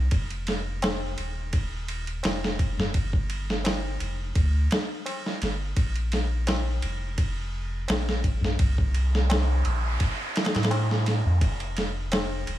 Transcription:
0.11 F1, kick, ride
0.30 ride
0.47 snare, ride
0.82 snare, ride, tabla na
1.18 D#1, ride
1.53 kick, ride
1.88 ride
2.07 ride
2.23 F1, snare, ride, tabla na
2.44 snare
2.59 kick, ride
2.78 snare, tabla ge
2.94 G1, kick, ride
3.13 kick
3.30 ride
3.50 snare
3.64 snare, ride, tabla na
4.00 F1, ride
4.35 D2, kick, ride
4.71 snare, ride
5.06 ride, tabla na
5.26 snare
5.42 G1, snare, ride
5.77 A#1, kick, ride
5.95 ride
6.12 snare, ride
6.47 snare, ride, tabla na
6.82 F1, ride
7.18 kick, ride
7.88 A#1, snare, ride, tabla na
8.09 snare
8.24 kick, ride
8.41 snare, tabla ge
8.59 C2, kick, ride, noise sweep
8.78 kick
8.94 ride
9.15 snare
9.30 snare, ride, tabla na
9.65 A#1, ride
10.00 kick, ride
10.36 snare, ride
10.45 snare, ride
10.55 A2, snare, ride
10.63 snare, ride
10.71 ride, tabla na
10.91 snare
11.06 snare, ride
11.25 F2
11.41 F1, kick, ride
11.60 ride
11.77 snare, ride
12.12 snare, ride, tabla na
12.47 D#1, ride

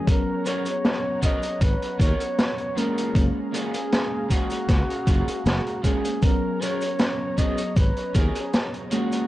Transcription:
Already playing: G#3 G#4
0.06 F#3 B3 C#4 G#4 A#4 C#5 F#5 A#5, kick, closed hi-hat, cabasa
0.46 B3 C#4 F#4 A#4 C#5, closed hi-hat, cabasa
0.66 closed hi-hat, cabasa
0.85 snare, closed hi-hat, cabasa
1.22 B3 C#4 F#4 A#4 D#5, kick, closed hi-hat, cabasa
1.43 closed hi-hat, cabasa
1.61 G#1 B4, kick, closed hi-hat, cabasa
1.82 closed hi-hat
1.99 D#2 B3 C#4 F#4 A#4 C#5, kick, closed hi-hat, cabasa
2.20 closed hi-hat, cabasa
2.38 snare, closed hi-hat, cabasa
2.58 closed hi-hat
2.76 G#3 A#3 C#4 F4 F#4 G#4 A#4 F5 A#5, closed hi-hat, cabasa
2.98 closed hi-hat, cabasa
3.15 F#1 G#3 A#3 C#4, kick, closed hi-hat, cabasa
3.53 A#3 F4 F#4 G#4, closed hi-hat, cabasa
3.74 closed hi-hat, cabasa
3.92 snare, closed hi-hat, cabasa
4.30 A#3 F4 F#4 G#4, kick, closed hi-hat, cabasa
4.50 closed hi-hat, cabasa
4.69 C#2, kick, snare, closed hi-hat, cabasa
4.90 closed hi-hat
5.07 F#1 A#3 F4 F#4 G#4, kick, closed hi-hat, cabasa
5.28 muted fretless electric bass stroke, closed hi-hat, cabasa
5.46 F#1 F#4, snare, closed hi-hat, cabasa
5.67 closed hi-hat
5.83 G#3 A#3 C#4 F4 F#4 G#4, kick, closed hi-hat, cabasa
6.05 closed hi-hat, cabasa
6.22 F#3 B3 C#4 G#4 A#4 C#5 A#5, kick, closed hi-hat, cabasa
6.61 B3 C#4 F#4 A#4 C#5, closed hi-hat, cabasa
6.81 closed hi-hat, cabasa
6.99 snare, closed hi-hat, cabasa
7.38 B3 C#4 F#4 G#4 D#5, kick, closed hi-hat, cabasa
7.58 closed hi-hat, cabasa
7.76 G#1 B4, kick, closed hi-hat, cabasa
7.96 closed hi-hat
8.14 D#2 B3 C#4 F#4 G#4 A#4, kick, closed hi-hat, cabasa
8.35 closed hi-hat, cabasa
8.53 snare, closed hi-hat, cabasa
8.74 closed hi-hat
8.91 G#3 A#3 C#4 F4 F#4 G#4 A#5, closed hi-hat, cabasa
9.12 closed hi-hat, cabasa

